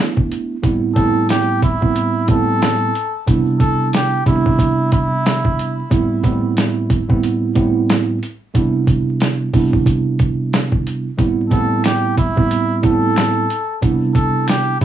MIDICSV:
0, 0, Header, 1, 4, 480
1, 0, Start_track
1, 0, Key_signature, 0, "minor"
1, 0, Tempo, 659341
1, 464, Time_signature, 4, 2, 24, 8
1, 10809, End_track
2, 0, Start_track
2, 0, Title_t, "Muted trumpet"
2, 0, Program_c, 0, 59
2, 690, Note_on_c, 0, 69, 85
2, 912, Note_off_c, 0, 69, 0
2, 943, Note_on_c, 0, 67, 87
2, 1159, Note_off_c, 0, 67, 0
2, 1188, Note_on_c, 0, 64, 85
2, 1637, Note_off_c, 0, 64, 0
2, 1674, Note_on_c, 0, 69, 91
2, 2360, Note_off_c, 0, 69, 0
2, 2618, Note_on_c, 0, 69, 82
2, 2837, Note_off_c, 0, 69, 0
2, 2872, Note_on_c, 0, 67, 90
2, 3084, Note_off_c, 0, 67, 0
2, 3102, Note_on_c, 0, 64, 80
2, 3554, Note_off_c, 0, 64, 0
2, 3586, Note_on_c, 0, 64, 88
2, 4276, Note_off_c, 0, 64, 0
2, 8372, Note_on_c, 0, 69, 82
2, 8593, Note_off_c, 0, 69, 0
2, 8623, Note_on_c, 0, 67, 89
2, 8839, Note_off_c, 0, 67, 0
2, 8866, Note_on_c, 0, 64, 85
2, 9316, Note_off_c, 0, 64, 0
2, 9354, Note_on_c, 0, 69, 92
2, 10040, Note_off_c, 0, 69, 0
2, 10297, Note_on_c, 0, 69, 84
2, 10516, Note_off_c, 0, 69, 0
2, 10548, Note_on_c, 0, 67, 90
2, 10762, Note_off_c, 0, 67, 0
2, 10781, Note_on_c, 0, 64, 82
2, 10809, Note_off_c, 0, 64, 0
2, 10809, End_track
3, 0, Start_track
3, 0, Title_t, "Tine electric piano"
3, 0, Program_c, 1, 4
3, 0, Note_on_c, 1, 57, 88
3, 0, Note_on_c, 1, 59, 89
3, 0, Note_on_c, 1, 62, 86
3, 0, Note_on_c, 1, 64, 107
3, 403, Note_off_c, 1, 57, 0
3, 404, Note_off_c, 1, 59, 0
3, 407, Note_off_c, 1, 62, 0
3, 409, Note_off_c, 1, 64, 0
3, 455, Note_on_c, 1, 45, 89
3, 459, Note_on_c, 1, 55, 87
3, 461, Note_on_c, 1, 59, 84
3, 465, Note_on_c, 1, 60, 79
3, 468, Note_on_c, 1, 64, 100
3, 684, Note_off_c, 1, 45, 0
3, 686, Note_off_c, 1, 55, 0
3, 687, Note_off_c, 1, 59, 0
3, 689, Note_off_c, 1, 60, 0
3, 690, Note_off_c, 1, 64, 0
3, 694, Note_on_c, 1, 45, 98
3, 696, Note_on_c, 1, 55, 86
3, 699, Note_on_c, 1, 59, 92
3, 702, Note_on_c, 1, 60, 85
3, 706, Note_on_c, 1, 64, 106
3, 1264, Note_off_c, 1, 45, 0
3, 1265, Note_off_c, 1, 55, 0
3, 1267, Note_off_c, 1, 59, 0
3, 1268, Note_off_c, 1, 60, 0
3, 1270, Note_off_c, 1, 64, 0
3, 1314, Note_on_c, 1, 45, 87
3, 1317, Note_on_c, 1, 55, 78
3, 1321, Note_on_c, 1, 59, 89
3, 1323, Note_on_c, 1, 60, 87
3, 1326, Note_on_c, 1, 64, 107
3, 1634, Note_off_c, 1, 45, 0
3, 1636, Note_off_c, 1, 55, 0
3, 1638, Note_off_c, 1, 59, 0
3, 1639, Note_off_c, 1, 60, 0
3, 1640, Note_off_c, 1, 64, 0
3, 1654, Note_on_c, 1, 45, 101
3, 1658, Note_on_c, 1, 55, 91
3, 1661, Note_on_c, 1, 59, 90
3, 1664, Note_on_c, 1, 60, 99
3, 1667, Note_on_c, 1, 64, 106
3, 2108, Note_off_c, 1, 45, 0
3, 2109, Note_off_c, 1, 55, 0
3, 2111, Note_off_c, 1, 59, 0
3, 2113, Note_off_c, 1, 60, 0
3, 2114, Note_off_c, 1, 64, 0
3, 2376, Note_on_c, 1, 48, 94
3, 2379, Note_on_c, 1, 55, 88
3, 2382, Note_on_c, 1, 59, 86
3, 2385, Note_on_c, 1, 62, 82
3, 2388, Note_on_c, 1, 64, 110
3, 3053, Note_off_c, 1, 48, 0
3, 3055, Note_off_c, 1, 55, 0
3, 3056, Note_off_c, 1, 59, 0
3, 3057, Note_off_c, 1, 62, 0
3, 3059, Note_off_c, 1, 64, 0
3, 3102, Note_on_c, 1, 48, 95
3, 3105, Note_on_c, 1, 55, 88
3, 3108, Note_on_c, 1, 59, 87
3, 3111, Note_on_c, 1, 62, 87
3, 3115, Note_on_c, 1, 64, 111
3, 4225, Note_off_c, 1, 48, 0
3, 4226, Note_off_c, 1, 55, 0
3, 4227, Note_off_c, 1, 59, 0
3, 4229, Note_off_c, 1, 62, 0
3, 4231, Note_off_c, 1, 64, 0
3, 4295, Note_on_c, 1, 45, 90
3, 4299, Note_on_c, 1, 55, 91
3, 4302, Note_on_c, 1, 59, 83
3, 4305, Note_on_c, 1, 60, 79
3, 4308, Note_on_c, 1, 64, 101
3, 4524, Note_off_c, 1, 45, 0
3, 4526, Note_off_c, 1, 55, 0
3, 4527, Note_off_c, 1, 59, 0
3, 4529, Note_off_c, 1, 60, 0
3, 4530, Note_off_c, 1, 64, 0
3, 4533, Note_on_c, 1, 45, 96
3, 4536, Note_on_c, 1, 55, 88
3, 4539, Note_on_c, 1, 59, 89
3, 4543, Note_on_c, 1, 60, 90
3, 4546, Note_on_c, 1, 64, 108
3, 5104, Note_off_c, 1, 45, 0
3, 5105, Note_off_c, 1, 55, 0
3, 5107, Note_off_c, 1, 59, 0
3, 5109, Note_off_c, 1, 60, 0
3, 5110, Note_off_c, 1, 64, 0
3, 5155, Note_on_c, 1, 45, 86
3, 5158, Note_on_c, 1, 55, 84
3, 5162, Note_on_c, 1, 59, 93
3, 5164, Note_on_c, 1, 60, 86
3, 5167, Note_on_c, 1, 64, 111
3, 5475, Note_off_c, 1, 45, 0
3, 5476, Note_off_c, 1, 55, 0
3, 5478, Note_off_c, 1, 59, 0
3, 5480, Note_off_c, 1, 60, 0
3, 5481, Note_off_c, 1, 64, 0
3, 5495, Note_on_c, 1, 45, 101
3, 5498, Note_on_c, 1, 55, 94
3, 5501, Note_on_c, 1, 59, 88
3, 5504, Note_on_c, 1, 60, 102
3, 5507, Note_on_c, 1, 64, 101
3, 5948, Note_off_c, 1, 45, 0
3, 5950, Note_off_c, 1, 55, 0
3, 5951, Note_off_c, 1, 59, 0
3, 5953, Note_off_c, 1, 60, 0
3, 5954, Note_off_c, 1, 64, 0
3, 6216, Note_on_c, 1, 48, 96
3, 6219, Note_on_c, 1, 55, 87
3, 6221, Note_on_c, 1, 59, 87
3, 6225, Note_on_c, 1, 62, 81
3, 6228, Note_on_c, 1, 64, 109
3, 6893, Note_off_c, 1, 48, 0
3, 6895, Note_off_c, 1, 55, 0
3, 6896, Note_off_c, 1, 59, 0
3, 6898, Note_off_c, 1, 62, 0
3, 6899, Note_off_c, 1, 64, 0
3, 6940, Note_on_c, 1, 48, 94
3, 6942, Note_on_c, 1, 55, 89
3, 6945, Note_on_c, 1, 59, 86
3, 6949, Note_on_c, 1, 62, 88
3, 6952, Note_on_c, 1, 64, 106
3, 8064, Note_off_c, 1, 48, 0
3, 8065, Note_off_c, 1, 55, 0
3, 8066, Note_off_c, 1, 59, 0
3, 8068, Note_off_c, 1, 62, 0
3, 8070, Note_off_c, 1, 64, 0
3, 8135, Note_on_c, 1, 45, 87
3, 8138, Note_on_c, 1, 55, 89
3, 8141, Note_on_c, 1, 59, 85
3, 8145, Note_on_c, 1, 60, 77
3, 8147, Note_on_c, 1, 64, 101
3, 8364, Note_off_c, 1, 45, 0
3, 8365, Note_off_c, 1, 55, 0
3, 8367, Note_off_c, 1, 59, 0
3, 8369, Note_off_c, 1, 60, 0
3, 8370, Note_off_c, 1, 64, 0
3, 8374, Note_on_c, 1, 45, 96
3, 8377, Note_on_c, 1, 55, 84
3, 8379, Note_on_c, 1, 59, 93
3, 8383, Note_on_c, 1, 60, 87
3, 8386, Note_on_c, 1, 64, 107
3, 8944, Note_off_c, 1, 45, 0
3, 8946, Note_off_c, 1, 55, 0
3, 8947, Note_off_c, 1, 59, 0
3, 8949, Note_off_c, 1, 60, 0
3, 8950, Note_off_c, 1, 64, 0
3, 8994, Note_on_c, 1, 45, 84
3, 8997, Note_on_c, 1, 55, 84
3, 9000, Note_on_c, 1, 59, 87
3, 9003, Note_on_c, 1, 60, 86
3, 9006, Note_on_c, 1, 64, 109
3, 9314, Note_off_c, 1, 45, 0
3, 9316, Note_off_c, 1, 55, 0
3, 9317, Note_off_c, 1, 59, 0
3, 9319, Note_off_c, 1, 60, 0
3, 9320, Note_off_c, 1, 64, 0
3, 9334, Note_on_c, 1, 45, 103
3, 9338, Note_on_c, 1, 55, 92
3, 9340, Note_on_c, 1, 59, 90
3, 9344, Note_on_c, 1, 60, 98
3, 9346, Note_on_c, 1, 64, 104
3, 9788, Note_off_c, 1, 45, 0
3, 9789, Note_off_c, 1, 55, 0
3, 9791, Note_off_c, 1, 59, 0
3, 9793, Note_off_c, 1, 60, 0
3, 9794, Note_off_c, 1, 64, 0
3, 10057, Note_on_c, 1, 48, 93
3, 10060, Note_on_c, 1, 55, 90
3, 10062, Note_on_c, 1, 59, 90
3, 10066, Note_on_c, 1, 62, 82
3, 10069, Note_on_c, 1, 64, 108
3, 10733, Note_off_c, 1, 48, 0
3, 10735, Note_off_c, 1, 55, 0
3, 10736, Note_off_c, 1, 59, 0
3, 10738, Note_off_c, 1, 62, 0
3, 10739, Note_off_c, 1, 64, 0
3, 10779, Note_on_c, 1, 48, 97
3, 10783, Note_on_c, 1, 55, 90
3, 10785, Note_on_c, 1, 59, 87
3, 10809, Note_off_c, 1, 48, 0
3, 10809, Note_off_c, 1, 55, 0
3, 10809, Note_off_c, 1, 59, 0
3, 10809, End_track
4, 0, Start_track
4, 0, Title_t, "Drums"
4, 124, Note_on_c, 9, 36, 95
4, 197, Note_off_c, 9, 36, 0
4, 230, Note_on_c, 9, 42, 69
4, 303, Note_off_c, 9, 42, 0
4, 463, Note_on_c, 9, 36, 121
4, 463, Note_on_c, 9, 42, 103
4, 535, Note_off_c, 9, 36, 0
4, 536, Note_off_c, 9, 42, 0
4, 699, Note_on_c, 9, 36, 99
4, 700, Note_on_c, 9, 42, 81
4, 772, Note_off_c, 9, 36, 0
4, 773, Note_off_c, 9, 42, 0
4, 940, Note_on_c, 9, 42, 107
4, 949, Note_on_c, 9, 38, 124
4, 1013, Note_off_c, 9, 42, 0
4, 1022, Note_off_c, 9, 38, 0
4, 1183, Note_on_c, 9, 36, 103
4, 1184, Note_on_c, 9, 42, 77
4, 1255, Note_off_c, 9, 36, 0
4, 1256, Note_off_c, 9, 42, 0
4, 1326, Note_on_c, 9, 36, 89
4, 1399, Note_off_c, 9, 36, 0
4, 1425, Note_on_c, 9, 42, 93
4, 1497, Note_off_c, 9, 42, 0
4, 1659, Note_on_c, 9, 42, 74
4, 1664, Note_on_c, 9, 36, 98
4, 1732, Note_off_c, 9, 42, 0
4, 1736, Note_off_c, 9, 36, 0
4, 1908, Note_on_c, 9, 42, 93
4, 1912, Note_on_c, 9, 38, 111
4, 1981, Note_off_c, 9, 42, 0
4, 1984, Note_off_c, 9, 38, 0
4, 2150, Note_on_c, 9, 42, 71
4, 2223, Note_off_c, 9, 42, 0
4, 2384, Note_on_c, 9, 36, 121
4, 2385, Note_on_c, 9, 42, 103
4, 2457, Note_off_c, 9, 36, 0
4, 2458, Note_off_c, 9, 42, 0
4, 2621, Note_on_c, 9, 36, 94
4, 2623, Note_on_c, 9, 42, 78
4, 2694, Note_off_c, 9, 36, 0
4, 2696, Note_off_c, 9, 42, 0
4, 2863, Note_on_c, 9, 42, 104
4, 2872, Note_on_c, 9, 38, 121
4, 2935, Note_off_c, 9, 42, 0
4, 2945, Note_off_c, 9, 38, 0
4, 3103, Note_on_c, 9, 36, 100
4, 3105, Note_on_c, 9, 42, 76
4, 3176, Note_off_c, 9, 36, 0
4, 3178, Note_off_c, 9, 42, 0
4, 3247, Note_on_c, 9, 36, 92
4, 3320, Note_off_c, 9, 36, 0
4, 3340, Note_on_c, 9, 36, 91
4, 3346, Note_on_c, 9, 42, 94
4, 3413, Note_off_c, 9, 36, 0
4, 3419, Note_off_c, 9, 42, 0
4, 3581, Note_on_c, 9, 42, 78
4, 3585, Note_on_c, 9, 36, 94
4, 3654, Note_off_c, 9, 42, 0
4, 3657, Note_off_c, 9, 36, 0
4, 3829, Note_on_c, 9, 42, 92
4, 3832, Note_on_c, 9, 38, 107
4, 3902, Note_off_c, 9, 42, 0
4, 3905, Note_off_c, 9, 38, 0
4, 3965, Note_on_c, 9, 36, 97
4, 4038, Note_off_c, 9, 36, 0
4, 4071, Note_on_c, 9, 42, 72
4, 4144, Note_off_c, 9, 42, 0
4, 4304, Note_on_c, 9, 36, 122
4, 4306, Note_on_c, 9, 42, 106
4, 4377, Note_off_c, 9, 36, 0
4, 4379, Note_off_c, 9, 42, 0
4, 4541, Note_on_c, 9, 36, 98
4, 4543, Note_on_c, 9, 42, 83
4, 4613, Note_off_c, 9, 36, 0
4, 4616, Note_off_c, 9, 42, 0
4, 4782, Note_on_c, 9, 42, 104
4, 4791, Note_on_c, 9, 38, 123
4, 4855, Note_off_c, 9, 42, 0
4, 4864, Note_off_c, 9, 38, 0
4, 5023, Note_on_c, 9, 36, 100
4, 5024, Note_on_c, 9, 42, 77
4, 5096, Note_off_c, 9, 36, 0
4, 5097, Note_off_c, 9, 42, 0
4, 5167, Note_on_c, 9, 36, 89
4, 5239, Note_off_c, 9, 36, 0
4, 5266, Note_on_c, 9, 42, 91
4, 5339, Note_off_c, 9, 42, 0
4, 5500, Note_on_c, 9, 42, 76
4, 5504, Note_on_c, 9, 36, 91
4, 5572, Note_off_c, 9, 42, 0
4, 5577, Note_off_c, 9, 36, 0
4, 5748, Note_on_c, 9, 42, 93
4, 5752, Note_on_c, 9, 38, 109
4, 5821, Note_off_c, 9, 42, 0
4, 5824, Note_off_c, 9, 38, 0
4, 5989, Note_on_c, 9, 42, 73
4, 6062, Note_off_c, 9, 42, 0
4, 6223, Note_on_c, 9, 36, 124
4, 6224, Note_on_c, 9, 42, 103
4, 6296, Note_off_c, 9, 36, 0
4, 6297, Note_off_c, 9, 42, 0
4, 6459, Note_on_c, 9, 36, 96
4, 6462, Note_on_c, 9, 42, 81
4, 6532, Note_off_c, 9, 36, 0
4, 6535, Note_off_c, 9, 42, 0
4, 6700, Note_on_c, 9, 42, 106
4, 6710, Note_on_c, 9, 38, 121
4, 6773, Note_off_c, 9, 42, 0
4, 6782, Note_off_c, 9, 38, 0
4, 6942, Note_on_c, 9, 36, 99
4, 6943, Note_on_c, 9, 46, 54
4, 7015, Note_off_c, 9, 36, 0
4, 7016, Note_off_c, 9, 46, 0
4, 7086, Note_on_c, 9, 36, 87
4, 7159, Note_off_c, 9, 36, 0
4, 7179, Note_on_c, 9, 36, 88
4, 7185, Note_on_c, 9, 42, 91
4, 7252, Note_off_c, 9, 36, 0
4, 7258, Note_off_c, 9, 42, 0
4, 7419, Note_on_c, 9, 42, 75
4, 7423, Note_on_c, 9, 36, 94
4, 7492, Note_off_c, 9, 42, 0
4, 7496, Note_off_c, 9, 36, 0
4, 7668, Note_on_c, 9, 42, 93
4, 7671, Note_on_c, 9, 38, 109
4, 7741, Note_off_c, 9, 42, 0
4, 7744, Note_off_c, 9, 38, 0
4, 7805, Note_on_c, 9, 36, 95
4, 7877, Note_off_c, 9, 36, 0
4, 7911, Note_on_c, 9, 42, 75
4, 7984, Note_off_c, 9, 42, 0
4, 8143, Note_on_c, 9, 36, 121
4, 8145, Note_on_c, 9, 42, 103
4, 8216, Note_off_c, 9, 36, 0
4, 8218, Note_off_c, 9, 42, 0
4, 8380, Note_on_c, 9, 36, 96
4, 8383, Note_on_c, 9, 42, 80
4, 8453, Note_off_c, 9, 36, 0
4, 8456, Note_off_c, 9, 42, 0
4, 8620, Note_on_c, 9, 26, 74
4, 8622, Note_on_c, 9, 42, 108
4, 8631, Note_on_c, 9, 38, 127
4, 8693, Note_off_c, 9, 26, 0
4, 8695, Note_off_c, 9, 42, 0
4, 8704, Note_off_c, 9, 38, 0
4, 8863, Note_on_c, 9, 36, 100
4, 8865, Note_on_c, 9, 42, 78
4, 8936, Note_off_c, 9, 36, 0
4, 8938, Note_off_c, 9, 42, 0
4, 9007, Note_on_c, 9, 36, 86
4, 9080, Note_off_c, 9, 36, 0
4, 9106, Note_on_c, 9, 42, 93
4, 9179, Note_off_c, 9, 42, 0
4, 9341, Note_on_c, 9, 42, 77
4, 9345, Note_on_c, 9, 36, 93
4, 9414, Note_off_c, 9, 42, 0
4, 9417, Note_off_c, 9, 36, 0
4, 9583, Note_on_c, 9, 26, 72
4, 9589, Note_on_c, 9, 42, 93
4, 9593, Note_on_c, 9, 38, 108
4, 9656, Note_off_c, 9, 26, 0
4, 9662, Note_off_c, 9, 42, 0
4, 9666, Note_off_c, 9, 38, 0
4, 9830, Note_on_c, 9, 42, 73
4, 9903, Note_off_c, 9, 42, 0
4, 10064, Note_on_c, 9, 36, 122
4, 10065, Note_on_c, 9, 42, 101
4, 10137, Note_off_c, 9, 36, 0
4, 10138, Note_off_c, 9, 42, 0
4, 10301, Note_on_c, 9, 36, 94
4, 10303, Note_on_c, 9, 42, 82
4, 10373, Note_off_c, 9, 36, 0
4, 10376, Note_off_c, 9, 42, 0
4, 10539, Note_on_c, 9, 26, 77
4, 10542, Note_on_c, 9, 42, 108
4, 10552, Note_on_c, 9, 38, 125
4, 10612, Note_off_c, 9, 26, 0
4, 10615, Note_off_c, 9, 42, 0
4, 10624, Note_off_c, 9, 38, 0
4, 10784, Note_on_c, 9, 36, 102
4, 10784, Note_on_c, 9, 42, 79
4, 10809, Note_off_c, 9, 36, 0
4, 10809, Note_off_c, 9, 42, 0
4, 10809, End_track
0, 0, End_of_file